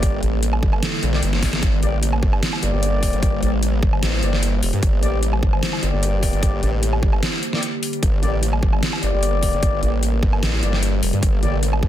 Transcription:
Already playing: G1 D3 G3 A#3 G4 A4 D5
0.03 kick, closed hi-hat
0.23 A1, closed hi-hat
0.43 closed hi-hat
0.53 low woodblock
0.63 G1, kick
0.73 low woodblock
0.83 snare, closed hi-hat
1.03 A#1, closed hi-hat
1.13 A#3 G4 D5, snare
1.23 G1, closed hi-hat
1.33 snare
1.43 kick, snare, open hi-hat
1.53 snare, closed hi-hat
1.63 G1 C5, kick, closed hi-hat
1.83 A1 A#3 G4 D5, closed hi-hat
2.03 closed hi-hat
2.13 low woodblock
2.23 G1, kick
2.33 low woodblock
2.43 snare, closed hi-hat
2.53 low woodblock
2.63 G1 A#3 G4 D5, closed hi-hat
2.73 G1
2.83 closed hi-hat
3.03 kick, open hi-hat
3.13 G1, closed hi-hat
3.23 kick, closed hi-hat
3.43 A1 A#3 G4 D5, closed hi-hat
3.63 closed hi-hat
3.83 G1, kick
3.93 low woodblock
4.03 A1, snare, closed hi-hat
4.23 G1 A#3 G4 D5, closed hi-hat
4.33 snare
4.43 closed hi-hat
4.63 F1, open hi-hat
4.73 G2, closed hi-hat
4.83 G1, kick, closed hi-hat
5.03 A1 A#3 G4 D5, closed hi-hat
5.23 closed hi-hat
5.33 low woodblock
5.43 G1, kick
5.53 low woodblock
5.63 snare, closed hi-hat
5.73 low woodblock
5.83 G1 A#3 G4 D5, closed hi-hat
5.93 G1
6.03 closed hi-hat
6.23 kick, open hi-hat
6.33 G1, closed hi-hat
6.43 kick, closed hi-hat
6.63 A1 A#3 G4 D5, closed hi-hat
6.83 closed hi-hat
6.93 low woodblock
7.03 G1, kick
7.13 low woodblock
7.23 snare, closed hi-hat
7.43 closed hi-hat
7.53 A#3 G4 D5, snare
7.63 closed hi-hat
7.83 open hi-hat
7.93 closed hi-hat
8.03 G1 A#4, kick, closed hi-hat
8.23 A1 A#3 G4 D5, closed hi-hat
8.43 closed hi-hat
8.53 low woodblock
8.63 G1, kick
8.73 low woodblock
8.83 snare, closed hi-hat
8.93 low woodblock
9.03 G1 A#3 G4 D5, closed hi-hat
9.13 G1
9.23 closed hi-hat
9.43 kick, open hi-hat
9.53 G1, closed hi-hat
9.63 kick, closed hi-hat
9.83 A1 A#3 G4 D5, closed hi-hat
10.03 closed hi-hat
10.23 G1, kick
10.33 low woodblock
10.43 A1, snare, closed hi-hat
10.63 G1 A#3 G4 D5, closed hi-hat
10.73 snare
10.83 closed hi-hat
11.03 F1, open hi-hat
11.13 G2, closed hi-hat
11.23 G1, kick, closed hi-hat
11.43 A1 A#3 G4 D5, closed hi-hat
11.63 closed hi-hat
11.73 low woodblock
11.83 G1, kick

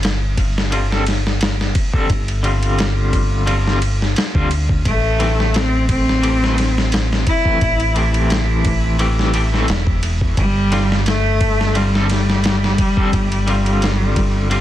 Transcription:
Already playing: G1
0.03 snare, ride
0.37 kick, ride
0.58 snare
0.72 D3 G3 C4 F4, ride
0.90 D3 G3 C4 A4, snare
1.06 snare, ride
1.27 snare
1.41 snare, ride
1.61 snare
1.75 kick, ride
1.93 D3 G3 C4 A4, kick
2.10 G1, kick, ride
2.28 ride
2.43 D3 G3 C4 F4, ride
2.63 ride
2.78 snare, ride
3.13 kick, ride
3.46 D3 G3 C4 F4, ride
3.67 snare
3.82 ride
4.02 snare
4.16 snare, ride
4.34 D2 D3 G3 C4 F4, kick
4.51 ride
4.69 kick
4.85 A1 A3, kick, ride
5.19 E3 A3 C4 G4, snare, ride
5.40 snare
5.54 C4, snare, ride
5.89 C4, kick, ride
6.09 snare
6.23 E3 A3 C4 G4, ride
6.41 E3 A3 C4 B4, snare
6.58 snare, ride
6.78 snare
6.92 snare, ride
7.13 snare
7.27 E4, kick, ride
7.45 E3 A3 C4 B4, kick
7.61 A1, kick, ride
7.80 ride
7.95 E3 A3 C4 G4, ride
8.14 ride
8.30 snare, ride
8.65 kick, ride
8.99 E3 A3 C4 G4, ride
9.19 snare
9.34 E3 A3 C4 G4, ride
9.52 E3 A3 C4 A4, snare
9.68 E1, snare, ride
9.87 kick
10.03 ride
10.21 kick
10.37 G1 G3, kick, ride
10.72 D3 G3 C4 F4, snare, ride
10.92 snare
11.06 A3, snare, ride
11.41 kick, ride
11.61 snare
11.75 D3 G3 C4 F4, ride
11.93 D3 G3 C4 A4, snare
12.10 snare, ride
12.30 snare
12.44 snare, ride
12.64 snare
12.78 kick, ride
12.96 D3 G3 C4 A4, kick
13.13 G1, kick, ride
13.32 ride
13.47 D3 G3 C4 F4, ride
13.66 ride
13.82 snare, ride
14.16 kick, ride
14.50 D3 G3 C4 F4, ride

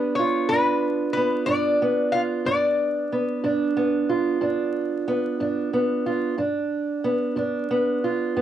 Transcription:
Already playing: G2 B3 D4 G4 B4
0.15 F4 C#5
0.49 G2 D4 B4
1.13 B4
1.17 B3
1.46 G2 D4 D5
1.82 B3
2.12 F4 F5
2.45 G2 D4 D5
3.12 B3
3.44 G2 D4
3.77 B3
4.09 F4
4.41 G2 D4
5.08 B3
5.40 G2 D4
5.73 B3
6.06 F4
6.38 G2 D4
7.04 B3
7.36 G2 D4
7.71 B3
8.04 F4
8.36 G2 B3

